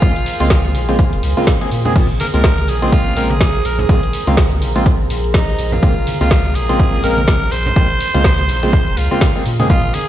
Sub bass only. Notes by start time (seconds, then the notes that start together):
0.02 A#1
0.16 A#1
0.40 C#2
0.75 A#1
1.13 F1
1.23 C#2
1.72 A#2
1.96 A#1
2.10 A#1
2.34 C#2
2.68 A#1
3.17 A#1
3.65 A#1
3.89 A#1
4.03 A#1
4.27 C#2
4.62 A#1
5.10 A#1
5.59 A#1
5.83 A#1
5.97 A#1
6.21 C#2
6.55 A#1
7.04 A#1
7.52 A#1
7.76 A#1
7.90 A#1
8.14 C#2
8.49 A#1
8.87 F1
8.97 C#2
9.46 A#2
9.70 A#1
9.84 A#1